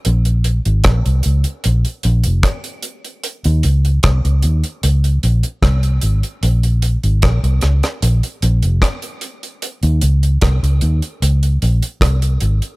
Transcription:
<<
  \new Staff \with { instrumentName = "Fingered electric bass" } { \clef bass \time 4/4 \key ees \dorian \tempo 4 = 75 bes,,8. aes,,16 bes,,16 c,16 des,16 r16 bes,,16 r16 bes,,16 f,,16 r4 | r16 ees,16 des,8 c,16 des,16 ees,16 r16 des,8 bes,,16 r16 c,8 aes,,16 r16 | bes,,8. aes,,16 bes,,16 c,16 des,16 r16 bes,,16 r16 bes,,16 f,,16 r4 | r16 ees,16 des,8 c,16 des,16 ees,16 r16 des,8 bes,,16 r16 c,8 aes,,16 r16 | }
  \new DrumStaff \with { instrumentName = "Drums" } \drummode { \time 4/4 hh16 hh16 hh16 hh16 <hh bd ss>16 hh16 hh16 hh16 hh16 hh16 hh16 hh16 <hh bd ss>16 hh16 hh16 hh16 | hh16 hh16 hh16 hh16 <hh bd ss>16 hh16 hh16 hh16 hh16 hh16 hh16 hh16 <hh bd ss>16 hh16 hh16 hh16 | hh16 hh16 hh16 hh16 <hh bd ss>16 hh16 <hh ss>16 <hh ss>16 hh16 hh16 hh16 hh16 <hh bd ss>16 hh16 hh16 hh16 | hh16 hh16 hh16 hh16 <hh bd ss>16 hh16 hh16 hh16 hh16 hh16 hh16 hh16 <hh bd ss>16 hh16 hh16 hh16 | }
>>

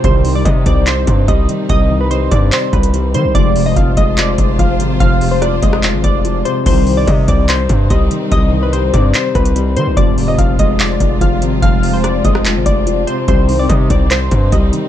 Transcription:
<<
  \new Staff \with { instrumentName = "Synth keys" } { \time 4/4 \key c \minor \tempo 4 = 145 c''8. d''16 ees''8 d''8 c''4 ees''8 r8 | ees''8. b'16 c''8 d''8 c''8 b'4 c''8 | d''8. ees''16 f''8 ees''8 d''4 f''8 r8 | f''8. c''16 d''8 ees''8 r8 d''4 c''8 |
c''8. d''16 ees''8 d''8 c''4 ees''8 r8 | ees''8. b'16 c''8 d''8 c''8 b'4 c''8 | d''8. ees''16 f''8 ees''8 d''4 f''8 r8 | f''8. c''16 d''8 ees''8 r8 d''4 c''8 |
c''8. d''16 ees''8 d''8 c''4 ees''8 r8 | }
  \new Staff \with { instrumentName = "String section" } { \time 4/4 \key c \minor << { <g ees'>1~ | <g ees'>1 | <aes f'>1~ | <aes f'>1 |
<g ees'>1~ | <g ees'>1 | <aes f'>1~ | <aes f'>1 |
<g ees'>1 | } \\ { c'1~ | c'1 | c''1~ | c''1 |
c'1~ | c'1 | c'1~ | c'1~ |
c'1 | } >> }
  \new Staff \with { instrumentName = "Grand piano" } { \clef bass \time 4/4 \key c \minor c8 ees8 g8 c'4. g8 ees8 | c8 ees8 g8 c'4. g8 ees8 | f,8 c8 f8 aes4. f8 c8 | f,8 c8 f8 aes4. f8 c8 |
c8 ees8 g8 c'4. g8 ees8 | c8 ees8 g8 c'4. g8 ees8 | f,8 c8 f8 aes4. f8 c8 | f,8 c8 f8 aes4. f8 c8 |
c8 ees8 g8 c'4. g8 ees8 | }
  \new Staff \with { instrumentName = "Analog polysynth" } { \clef bass \time 4/4 \key c \minor <c ees g>4 r2. | r1 | <aes, c f>4 r2. | r1 |
<c ees g>4 r2. | r1 | <aes, c f>4 r2. | r1 |
<c ees g>4 r2. | }
  \new Staff \with { instrumentName = "808-style bass" } { \clef bass \time 4/4 \key c \minor c,4 c8 c,4 g,8 c,8 r8 | c,4. g,8 r8 c,4 ees16 c,16 | f,,4 f,,8 f,,4 f,,8 f,,8 aes,,8 | f,,4. f,,8. aes,,16 f,,4 r8 |
c,4 c8 c,4 g,8 c,8 r8 | c,4. g,8 r8 c,4 ees16 c,16 | f,,4 f,,8 f,,4 f,,8 f,,8 aes,,8 | f,,4. f,,8. aes,,16 f,,4 r8 |
c,4 c8 c,4 g,8 c,8 r8 | }
  \new DrumStaff \with { instrumentName = "Drums" } \drummode { \time 4/4 <hh bd>8 hho8 <hh bd>8 <hh bd>8 <hc hh>8 <hh bd>8 <hh bd>8 hh8 | <hh bd>4 hh8 <hh bd>8 <hc hh>8 <hh bd>16 hh16 hh8 hh8 | <hh bd>8 hho8 <hh bd>8 <hh bd>8 <hc hh>8 <hh bd>8 <hh bd>8 hh8 | <hh bd>8 hho8 <hh ss>8 <hh bd>16 ss16 <hc hh>8 <hh bd>8 hh8 hh8 |
<cymc hh bd>8 hho8 <hh bd>8 <hh bd>8 <hc hh>8 <hh bd>8 <hh bd>8 hh8 | <hh bd>4 hh8 <hh bd>8 <hc hh>8 <hh bd>16 hh16 hh8 hh8 | <hh bd>8 hho8 <hh bd>8 <hh bd>8 <hc hh>8 <hh bd>8 <hh bd>8 hh8 | <hh bd>8 hho8 <hh ss>8 <hh bd>16 ss16 <hc hh>8 <hh bd>8 hh8 hh8 |
<hh bd>8 hho8 <hh bd>8 <hh bd>8 <hc hh>8 <hh bd>8 <hh bd>8 hh8 | }
>>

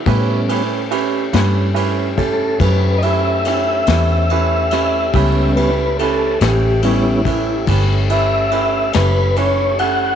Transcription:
<<
  \new Staff \with { instrumentName = "Tonewheel organ" } { \time 12/8 \key a \major \tempo 4. = 47 r2 r8 a'8 b'8 <dis'' e''>2~ <dis'' e''>8~ | <dis'' e''>8 b'8 a'8 g'8 <cis' e'>4 r8 e''4 b'8 cis''8 fis''8 | }
  \new Staff \with { instrumentName = "Tonewheel organ" } { \time 12/8 \key a \major <g b cis'>8 r1 r4. | <g b cis'>8 r4. <g b>8 r2. r8 | }
  \new Staff \with { instrumentName = "Upright piano" } { \time 12/8 \key a \major <cis' e' g' b'>8 <cis' e' g' b'>8 <cis' e' g' b'>8 <cis' e' g' b'>8 <cis' e' g' b'>8 <cis' e' g' cis''>8 <cis' e' g' b'>8 <cis' e' g' b'>8 <cis' e' g' cis''>8 <cis' e' g' b'>8 <cis' e' g' b'>8 <cis' e' g' b'>8 | <cis' e' g' b'>8 <cis' e' g' b'>8 <cis' e' g' b'>8 <cis' e' g' b'>8 <cis' e' g' cis''>8 <cis' e' g' b'>8 <cis' e' g' b'>8 <cis' e' g' b'>8 <cis' e' g' b'>8 <cis' e' g' b'>8 <cis' e' g' b'>8 <cis' e' g' a'>8 | }
  \new Staff \with { instrumentName = "French horn section" } { \time 12/8 \key a \major <a cis' g'>1.~ | <a cis' g'>1. | }
  \new Staff \with { instrumentName = "Fingered electric bass" } { \clef bass \time 12/8 \key a \major a,4. g,4. fis,4. e,4. | cis,4. a,,4. g,,4. fis,,4. | }
  \new DrumStaff \with { instrumentName = "Drums" } \drummode { \time 12/8 <bd cymr>8 cymr8 cymr8 <cymr sn>8 cymr8 <bd cymr>8 <bd cymr>8 cymr8 <cymr sn>8 <cymr sn>8 cymr8 <cymr sn>8 | <bd cymr>8 cymr8 cymr8 <cymr sn>8 cymr8 <bd cymr>8 <bd cymr>8 cymr8 cymr8 <cymr sn>8 cymr8 cymr8 | }
>>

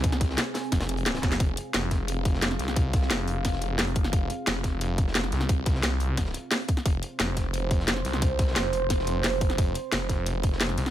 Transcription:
<<
  \new Staff \with { instrumentName = "Analog synth pad" } { \time 4/4 \key f \minor \tempo 4 = 176 << { aes''1 | f''1~ | f''1~ | f''1~ |
f''1 | c''1~ | c''1~ | c''1 | } \\ { <c' aes'>1~ | <c' aes'>1~ | <c' aes'>1~ | <c' aes'>1~ |
<c' aes'>1~ | <c' aes'>1~ | <c' aes'>1~ | <c' aes'>1 | } >> }
  \new Staff \with { instrumentName = "Detuned saw bass" } { \clef bass \time 4/4 \key f \minor c,4 r4 f,,4. f,,8 | f,,8 r8 f,,2~ f,,8 c,8~ | c,4 f,,2~ f,,8 ges,,8 | f,,8 r8 f,,2~ f,,8 c,8~ |
c,4 c,4. r4. | f,,8 r8 f,,2~ f,,8 c,8~ | c,4 f,,2~ f,,8 ges,,8 | f,,8 r8 f,,2~ f,,8 c,8 | }
  \new DrumStaff \with { instrumentName = "Drums" } \drummode { \time 4/4 <hh bd>16 sn16 <hh bd sn>16 sn16 <hh sn>8 <hh hho sn>16 hh16 <hh bd sn>16 <hh sn>16 hh16 hh16 <hh sn>16 <hh sn>16 <hh bd sn>16 <hh sn>16 | <hh bd>8 hh8 <hh sn>8 <hh bd sn>8 hh8 <hh bd>16 sn16 <hh sn>16 sn16 <hh sn>16 sn16 | <hh bd>8 <hh bd sn>16 sn16 <hh sn>8 <hh hho>8 <hh bd sn>16 sn16 hh8 <hh sn>16 hh16 <hh bd>16 sn16 | <hh bd>8 hh8 <hh sn>8 <hh bd sn>8 hh8 <hh bd>16 sn16 <hh sn>16 sn16 <hh sn>16 sn16 |
<hh bd>8 <hh bd sn>16 sn16 <hh sn>8 <hh hho>8 <hh bd sn>16 sn16 hh8 <hh sn>16 hh16 <hh bd>16 sn16 | <hh bd>8 hh8 <hh sn>8 <hh bd sn>8 hh8 <hh bd>16 sn16 <hh sn>16 sn16 <hh sn>16 sn16 | <hh bd>8 <hh bd sn>16 sn16 <hh sn>8 <hh hho>8 <hh bd sn>16 sn16 hh8 <hh sn>16 hh16 <hh bd>16 sn16 | <hh bd>8 hh8 <hh sn>8 <hh bd sn>8 hh8 <hh bd>16 sn16 <hh sn>16 sn16 <hh sn>16 sn16 | }
>>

